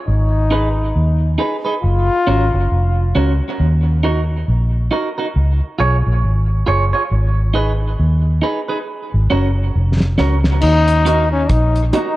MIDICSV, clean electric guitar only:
0, 0, Header, 1, 2, 480
1, 0, Start_track
1, 0, Key_signature, -6, "minor"
1, 0, Tempo, 879765
1, 33, Time_signature, 4, 2, 24, 8
1, 6637, End_track
2, 0, Start_track
2, 0, Title_t, "Clean electric guitar"
2, 0, Program_c, 0, 27
2, 277, Note_on_c, 0, 63, 78
2, 281, Note_on_c, 0, 68, 75
2, 284, Note_on_c, 0, 71, 83
2, 369, Note_off_c, 0, 63, 0
2, 371, Note_off_c, 0, 68, 0
2, 372, Note_off_c, 0, 71, 0
2, 754, Note_on_c, 0, 63, 75
2, 758, Note_on_c, 0, 68, 76
2, 763, Note_on_c, 0, 71, 79
2, 847, Note_off_c, 0, 63, 0
2, 849, Note_off_c, 0, 68, 0
2, 852, Note_off_c, 0, 71, 0
2, 899, Note_on_c, 0, 71, 58
2, 903, Note_on_c, 0, 68, 56
2, 906, Note_on_c, 0, 63, 47
2, 947, Note_off_c, 0, 71, 0
2, 949, Note_off_c, 0, 68, 0
2, 951, Note_off_c, 0, 63, 0
2, 1239, Note_on_c, 0, 61, 74
2, 1243, Note_on_c, 0, 66, 78
2, 1246, Note_on_c, 0, 70, 77
2, 1330, Note_off_c, 0, 61, 0
2, 1332, Note_off_c, 0, 66, 0
2, 1334, Note_off_c, 0, 70, 0
2, 1720, Note_on_c, 0, 61, 86
2, 1723, Note_on_c, 0, 66, 83
2, 1728, Note_on_c, 0, 70, 76
2, 1810, Note_off_c, 0, 61, 0
2, 1812, Note_off_c, 0, 66, 0
2, 1814, Note_off_c, 0, 70, 0
2, 2201, Note_on_c, 0, 63, 79
2, 2205, Note_on_c, 0, 66, 84
2, 2208, Note_on_c, 0, 70, 94
2, 2291, Note_off_c, 0, 63, 0
2, 2293, Note_off_c, 0, 66, 0
2, 2295, Note_off_c, 0, 70, 0
2, 2680, Note_on_c, 0, 63, 76
2, 2683, Note_on_c, 0, 66, 78
2, 2688, Note_on_c, 0, 70, 90
2, 2771, Note_off_c, 0, 63, 0
2, 2772, Note_off_c, 0, 66, 0
2, 2775, Note_off_c, 0, 70, 0
2, 2825, Note_on_c, 0, 70, 65
2, 2829, Note_on_c, 0, 66, 61
2, 2833, Note_on_c, 0, 63, 56
2, 2871, Note_off_c, 0, 70, 0
2, 2872, Note_off_c, 0, 66, 0
2, 2875, Note_off_c, 0, 63, 0
2, 3156, Note_on_c, 0, 65, 80
2, 3162, Note_on_c, 0, 68, 97
2, 3166, Note_on_c, 0, 73, 103
2, 3249, Note_off_c, 0, 65, 0
2, 3252, Note_off_c, 0, 68, 0
2, 3254, Note_off_c, 0, 73, 0
2, 3636, Note_on_c, 0, 65, 74
2, 3641, Note_on_c, 0, 68, 77
2, 3644, Note_on_c, 0, 73, 88
2, 3729, Note_off_c, 0, 65, 0
2, 3731, Note_off_c, 0, 68, 0
2, 3733, Note_off_c, 0, 73, 0
2, 3782, Note_on_c, 0, 73, 66
2, 3788, Note_on_c, 0, 68, 54
2, 3790, Note_on_c, 0, 65, 52
2, 3829, Note_off_c, 0, 73, 0
2, 3832, Note_off_c, 0, 68, 0
2, 3833, Note_off_c, 0, 65, 0
2, 4113, Note_on_c, 0, 63, 84
2, 4118, Note_on_c, 0, 68, 92
2, 4121, Note_on_c, 0, 71, 93
2, 4207, Note_off_c, 0, 63, 0
2, 4210, Note_off_c, 0, 68, 0
2, 4212, Note_off_c, 0, 71, 0
2, 4593, Note_on_c, 0, 63, 76
2, 4600, Note_on_c, 0, 68, 77
2, 4602, Note_on_c, 0, 71, 83
2, 4687, Note_off_c, 0, 63, 0
2, 4691, Note_off_c, 0, 68, 0
2, 4692, Note_off_c, 0, 71, 0
2, 4739, Note_on_c, 0, 71, 61
2, 4743, Note_on_c, 0, 68, 66
2, 4747, Note_on_c, 0, 63, 50
2, 4787, Note_off_c, 0, 71, 0
2, 4790, Note_off_c, 0, 68, 0
2, 4791, Note_off_c, 0, 63, 0
2, 5076, Note_on_c, 0, 61, 92
2, 5079, Note_on_c, 0, 66, 82
2, 5085, Note_on_c, 0, 70, 87
2, 5169, Note_off_c, 0, 61, 0
2, 5170, Note_off_c, 0, 66, 0
2, 5173, Note_off_c, 0, 70, 0
2, 5555, Note_on_c, 0, 61, 79
2, 5560, Note_on_c, 0, 66, 96
2, 5564, Note_on_c, 0, 70, 88
2, 5648, Note_off_c, 0, 61, 0
2, 5651, Note_off_c, 0, 66, 0
2, 5653, Note_off_c, 0, 70, 0
2, 6032, Note_on_c, 0, 63, 82
2, 6038, Note_on_c, 0, 66, 74
2, 6041, Note_on_c, 0, 70, 73
2, 6126, Note_off_c, 0, 63, 0
2, 6129, Note_off_c, 0, 66, 0
2, 6131, Note_off_c, 0, 70, 0
2, 6513, Note_on_c, 0, 63, 83
2, 6517, Note_on_c, 0, 66, 89
2, 6520, Note_on_c, 0, 70, 85
2, 6606, Note_off_c, 0, 63, 0
2, 6608, Note_off_c, 0, 66, 0
2, 6610, Note_off_c, 0, 70, 0
2, 6637, End_track
0, 0, End_of_file